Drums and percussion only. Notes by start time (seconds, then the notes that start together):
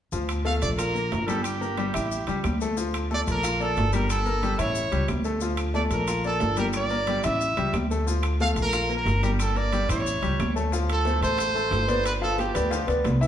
0.12 high conga, maracas
0.29 high conga, high timbale, claves, maracas
0.45 high conga, low timbale, maracas
0.62 high conga, high timbale, maracas
0.78 high conga, high timbale, claves, maracas
0.95 high conga, maracas
1.12 high conga, high timbale, low timbale, maracas
1.28 high conga, high timbale, maracas
1.44 high timbale, claves, maracas
1.62 high conga, maracas
1.78 high conga, high timbale, low timbale, maracas
1.94 high conga, high timbale, claves, maracas
2.11 high conga, maracas
2.27 high conga, high timbale, maracas
2.44 high conga, high timbale, low timbale, claves, maracas
2.61 maracas
2.77 high conga, maracas
2.94 high conga, high timbale, claves, maracas
3.11 high conga, low timbale, maracas
3.27 high conga, high timbale, maracas
3.44 high conga, high timbale, claves, maracas
3.60 high conga, maracas
3.76 high conga, high timbale, low timbale, maracas
3.93 high conga, high timbale, maracas
4.10 high conga, high timbale, claves, maracas
4.26 maracas
4.43 high conga, high timbale, low timbale, maracas
4.59 high conga, high timbale, claves, maracas
4.75 high conga, maracas
4.92 high conga, high timbale, maracas
5.08 high conga, high timbale, low timbale, claves, maracas
5.24 maracas
5.41 high conga, maracas
5.57 high conga, high timbale, claves, maracas
5.74 high conga, low timbale, maracas
5.91 high conga, high timbale, maracas
6.08 high conga, high timbale, claves, maracas
6.24 high conga, maracas
6.40 high conga, high timbale, low timbale, maracas
6.57 high conga, high timbale, maracas
6.73 high timbale, claves, maracas
6.90 high conga, maracas
7.07 high conga, high timbale, low timbale, maracas
7.23 high conga, high timbale, claves, maracas
7.40 high conga, maracas
7.57 high conga, high timbale, maracas
7.74 high conga, high timbale, low timbale, claves, maracas
7.90 high conga, maracas
8.07 high conga, maracas
8.23 high conga, high timbale, claves, maracas
8.40 high conga, low timbale, maracas
8.56 high conga, high timbale, maracas
8.72 high conga, high timbale, claves, maracas
8.90 high conga, maracas
9.07 high conga, high timbale, low timbale, maracas
9.23 high conga, high timbale, maracas
9.39 high timbale, claves, maracas
9.56 high conga, maracas
9.73 high conga, high timbale, low timbale, maracas
9.89 high timbale, claves, maracas
10.07 high conga, maracas
10.23 high conga, high timbale, maracas
10.40 high conga, high timbale, low timbale, claves, maracas
10.57 maracas
10.72 high bongo, high conga, maracas
10.89 high conga, high timbale, maracas
11.05 high bongo, high conga, low timbale, maracas
11.22 high conga, high timbale, maracas
11.38 high bongo, high conga, high timbale, maracas
11.56 high conga, maracas
11.71 high bongo, low bongo, high conga, high timbale, low timbale, maracas
11.89 high conga, high timbale, maracas
12.04 high bongo, high conga, high timbale, maracas
12.22 high conga, maracas
12.38 high bongo, high conga, high timbale, low timbale, maracas
12.55 high bongo, high timbale, maracas
12.71 high bongo, high conga, maracas
12.88 high bongo, high conga, high timbale, maracas
13.05 high bongo, low bongo, high conga, high timbale, low timbale, maracas
13.21 high bongo, maracas